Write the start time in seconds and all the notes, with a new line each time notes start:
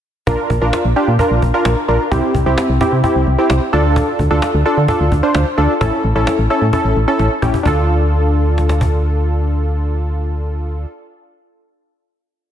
0.27 A#1 D4 F4 A#4, cajon bass
0.50 A#1, cajon bass
0.61 A#1 D4 F4 A#4
0.73 cajon slap
0.85 A#1
0.96 D4 F4 G4, cajon slap
1.08 A#2
1.19 D4 F4 A#4, cajon bass
1.31 A#1
1.42 A#1, cajon bass
1.54 D4 F4 A#4
1.65 A#1, cajon slap
1.88 A#1 D4 F4 A#4, cajon slap
2.11 C2 C4 E4 G4, cajon bass
2.35 C2, cajon bass
2.46 C2 C4 E4 G4
2.58 cajon slap
2.69 C2
2.81 C4 E4 G4, cajon bass
2.92 C3
3.04 C4 E4 G4, cajon bass
3.16 C2
3.27 C2, cajon slap
3.38 C4 E4 G4
3.50 C2, cajon slap
3.73 D2 D4 F4 A4, cajon slap
3.96 cajon bass
4.19 D2, cajon bass
4.31 D2 D4 F4 A4
4.42 cajon slap
4.54 D2
4.65 D4 F4 A4, cajon slap
4.77 D3
4.88 D4 F4 A4, cajon bass
5.00 D2
5.12 D2, cajon bass
5.23 D4 F4 C5
5.35 D2, cajon slap
5.58 D2 D4 F4 A4, cajon slap
5.81 A1 C#4 E4 A4, cajon bass
6.04 A1, cajon slap
6.16 A1 C#4 E4 A4
6.27 cajon slap
6.39 A1
6.50 C#4 E4 A4, cajon slap
6.62 A2
6.73 C#4 E4 A4, cajon bass
6.85 A1
6.96 A1, cajon slap
7.08 C#4 E4 A4
7.19 A1, cajon slap
7.42 A1 C#4 E4 G4, cajon bass
7.54 cajon bass
7.63 D2 D4 F4, cajon bass
7.67 A4
8.58 cajon slap
8.69 cajon slap
8.81 cajon bass